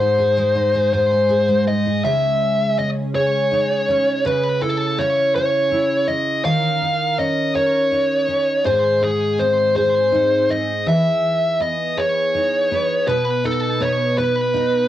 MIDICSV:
0, 0, Header, 1, 3, 480
1, 0, Start_track
1, 0, Key_signature, 4, "minor"
1, 0, Tempo, 736196
1, 1327, Time_signature, 6, 3, 24, 8
1, 9702, End_track
2, 0, Start_track
2, 0, Title_t, "Lead electric guitar"
2, 0, Program_c, 0, 29
2, 0, Note_on_c, 0, 72, 74
2, 602, Note_off_c, 0, 72, 0
2, 610, Note_on_c, 0, 72, 76
2, 1064, Note_off_c, 0, 72, 0
2, 1094, Note_on_c, 0, 75, 82
2, 1332, Note_off_c, 0, 75, 0
2, 1335, Note_on_c, 0, 76, 86
2, 1816, Note_off_c, 0, 76, 0
2, 1818, Note_on_c, 0, 75, 76
2, 1882, Note_off_c, 0, 75, 0
2, 2056, Note_on_c, 0, 73, 83
2, 2776, Note_off_c, 0, 73, 0
2, 2779, Note_on_c, 0, 71, 84
2, 2997, Note_off_c, 0, 71, 0
2, 3014, Note_on_c, 0, 69, 75
2, 3251, Note_on_c, 0, 73, 80
2, 3257, Note_off_c, 0, 69, 0
2, 3471, Note_off_c, 0, 73, 0
2, 3492, Note_on_c, 0, 73, 82
2, 3962, Note_on_c, 0, 75, 85
2, 3980, Note_off_c, 0, 73, 0
2, 4203, Note_off_c, 0, 75, 0
2, 4205, Note_on_c, 0, 77, 98
2, 4687, Note_off_c, 0, 77, 0
2, 4690, Note_on_c, 0, 75, 86
2, 4907, Note_off_c, 0, 75, 0
2, 4926, Note_on_c, 0, 73, 84
2, 5642, Note_off_c, 0, 73, 0
2, 5644, Note_on_c, 0, 72, 86
2, 5886, Note_on_c, 0, 68, 75
2, 5887, Note_off_c, 0, 72, 0
2, 6125, Note_on_c, 0, 72, 86
2, 6129, Note_off_c, 0, 68, 0
2, 6358, Note_off_c, 0, 72, 0
2, 6366, Note_on_c, 0, 72, 86
2, 6849, Note_on_c, 0, 75, 80
2, 6859, Note_off_c, 0, 72, 0
2, 7092, Note_off_c, 0, 75, 0
2, 7095, Note_on_c, 0, 76, 89
2, 7573, Note_off_c, 0, 76, 0
2, 7576, Note_on_c, 0, 75, 86
2, 7814, Note_on_c, 0, 73, 91
2, 7818, Note_off_c, 0, 75, 0
2, 8526, Note_off_c, 0, 73, 0
2, 8529, Note_on_c, 0, 71, 98
2, 8772, Note_off_c, 0, 71, 0
2, 8773, Note_on_c, 0, 69, 85
2, 9009, Note_on_c, 0, 73, 88
2, 9013, Note_off_c, 0, 69, 0
2, 9245, Note_off_c, 0, 73, 0
2, 9248, Note_on_c, 0, 71, 90
2, 9702, Note_off_c, 0, 71, 0
2, 9702, End_track
3, 0, Start_track
3, 0, Title_t, "Steel-string acoustic guitar"
3, 0, Program_c, 1, 25
3, 0, Note_on_c, 1, 44, 82
3, 0, Note_on_c, 1, 68, 55
3, 1, Note_on_c, 1, 63, 57
3, 116, Note_off_c, 1, 68, 0
3, 119, Note_on_c, 1, 68, 55
3, 241, Note_on_c, 1, 56, 63
3, 358, Note_off_c, 1, 63, 0
3, 361, Note_on_c, 1, 63, 58
3, 479, Note_off_c, 1, 68, 0
3, 482, Note_on_c, 1, 68, 62
3, 597, Note_off_c, 1, 44, 0
3, 605, Note_on_c, 1, 44, 71
3, 725, Note_off_c, 1, 63, 0
3, 728, Note_on_c, 1, 63, 58
3, 839, Note_off_c, 1, 68, 0
3, 842, Note_on_c, 1, 68, 66
3, 964, Note_off_c, 1, 56, 0
3, 966, Note_on_c, 1, 56, 62
3, 1086, Note_off_c, 1, 63, 0
3, 1088, Note_on_c, 1, 63, 55
3, 1208, Note_off_c, 1, 68, 0
3, 1210, Note_on_c, 1, 68, 55
3, 1329, Note_off_c, 1, 44, 0
3, 1332, Note_on_c, 1, 49, 79
3, 1333, Note_off_c, 1, 68, 0
3, 1336, Note_on_c, 1, 68, 67
3, 1812, Note_on_c, 1, 61, 55
3, 1832, Note_off_c, 1, 63, 0
3, 2047, Note_off_c, 1, 68, 0
3, 2050, Note_on_c, 1, 68, 55
3, 2290, Note_on_c, 1, 63, 60
3, 2529, Note_off_c, 1, 61, 0
3, 2532, Note_on_c, 1, 61, 57
3, 2762, Note_off_c, 1, 49, 0
3, 2770, Note_on_c, 1, 49, 83
3, 2818, Note_off_c, 1, 63, 0
3, 3008, Note_on_c, 1, 64, 54
3, 3247, Note_off_c, 1, 61, 0
3, 3248, Note_off_c, 1, 56, 0
3, 3249, Note_on_c, 1, 61, 57
3, 3488, Note_off_c, 1, 68, 0
3, 3491, Note_on_c, 1, 68, 61
3, 3717, Note_off_c, 1, 64, 0
3, 3725, Note_on_c, 1, 64, 58
3, 3962, Note_off_c, 1, 61, 0
3, 3964, Note_on_c, 1, 61, 57
3, 4200, Note_off_c, 1, 49, 0
3, 4203, Note_off_c, 1, 68, 0
3, 4203, Note_on_c, 1, 51, 80
3, 4206, Note_on_c, 1, 70, 73
3, 4250, Note_off_c, 1, 64, 0
3, 4445, Note_on_c, 1, 63, 57
3, 4464, Note_off_c, 1, 61, 0
3, 4685, Note_on_c, 1, 61, 61
3, 4914, Note_off_c, 1, 70, 0
3, 4922, Note_on_c, 1, 70, 60
3, 5158, Note_off_c, 1, 63, 0
3, 5160, Note_on_c, 1, 63, 62
3, 5390, Note_off_c, 1, 61, 0
3, 5398, Note_on_c, 1, 61, 54
3, 5635, Note_on_c, 1, 44, 84
3, 5637, Note_off_c, 1, 70, 0
3, 5640, Note_on_c, 1, 68, 66
3, 5684, Note_off_c, 1, 61, 0
3, 5872, Note_off_c, 1, 63, 0
3, 5875, Note_on_c, 1, 63, 54
3, 6117, Note_on_c, 1, 60, 55
3, 6357, Note_off_c, 1, 68, 0
3, 6360, Note_on_c, 1, 68, 62
3, 6485, Note_off_c, 1, 51, 0
3, 6596, Note_off_c, 1, 63, 0
3, 6599, Note_on_c, 1, 63, 58
3, 6831, Note_off_c, 1, 60, 0
3, 6839, Note_on_c, 1, 60, 53
3, 7082, Note_off_c, 1, 44, 0
3, 7083, Note_on_c, 1, 52, 80
3, 7085, Note_off_c, 1, 68, 0
3, 7088, Note_on_c, 1, 68, 64
3, 7130, Note_off_c, 1, 60, 0
3, 7564, Note_on_c, 1, 59, 61
3, 7797, Note_off_c, 1, 68, 0
3, 7805, Note_on_c, 1, 68, 61
3, 8047, Note_off_c, 1, 63, 0
3, 8049, Note_on_c, 1, 63, 61
3, 8286, Note_off_c, 1, 59, 0
3, 8289, Note_on_c, 1, 59, 59
3, 8524, Note_off_c, 1, 52, 0
3, 8524, Note_off_c, 1, 68, 0
3, 8525, Note_on_c, 1, 47, 86
3, 8527, Note_on_c, 1, 71, 69
3, 8762, Note_off_c, 1, 63, 0
3, 8765, Note_on_c, 1, 63, 57
3, 8997, Note_off_c, 1, 59, 0
3, 9000, Note_on_c, 1, 59, 59
3, 9236, Note_off_c, 1, 71, 0
3, 9244, Note_on_c, 1, 71, 62
3, 9472, Note_off_c, 1, 63, 0
3, 9480, Note_on_c, 1, 63, 62
3, 9702, Note_off_c, 1, 47, 0
3, 9702, Note_off_c, 1, 59, 0
3, 9702, Note_off_c, 1, 63, 0
3, 9702, Note_off_c, 1, 71, 0
3, 9702, End_track
0, 0, End_of_file